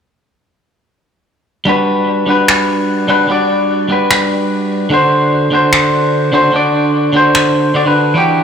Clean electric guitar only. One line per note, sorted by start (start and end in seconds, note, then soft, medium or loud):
1.65 2.25 G3 medium
1.65 2.26 D4 medium
1.65 2.26 F#4 medium
1.69 2.27 B4 medium
2.26 3.06 G3 medium
2.26 3.07 D4 medium
2.26 3.07 F#4 medium
2.26 3.08 B4 medium
3.08 3.26 G3 medium
3.08 3.27 D4 medium
3.08 3.27 F#4 medium
3.08 3.28 B4 medium
3.27 3.87 G3 medium
3.27 3.88 D4 medium
3.27 3.88 F#4 medium
3.31 3.89 D5 medium
3.88 4.88 G3 medium
3.88 4.89 D4 medium
3.88 4.90 F#4 medium
3.92 4.90 B4 medium
4.90 5.49 D3 medium
4.90 5.50 D4 medium
4.90 5.51 F#4 medium
4.90 5.51 C5 loud
5.51 6.30 D3 medium
5.51 6.31 D4 medium
5.51 6.32 F#4 medium
5.51 6.32 C5 medium
6.33 6.51 D3 medium
6.33 6.51 D4 medium
6.33 6.52 F#4 medium
6.33 6.52 C5 medium
6.52 7.11 D3 medium
6.52 7.12 D4 medium
6.52 7.13 F#4 medium
6.52 7.13 D5 medium
7.13 7.73 D3 medium
7.13 7.73 D4 medium
7.13 7.74 F#4 medium
7.17 7.75 C5 medium
7.74 7.83 D3 medium
7.74 7.84 D4 medium
7.74 7.84 F#4 medium
7.74 7.84 D5 medium
7.85 8.13 D3 medium
7.85 8.14 D4 medium
7.85 8.14 F#4 medium
7.85 8.14 B4 medium
8.14 8.44 E3 medium
8.14 8.44 D4 medium
8.14 8.44 F#4 medium
8.14 8.44 G4 medium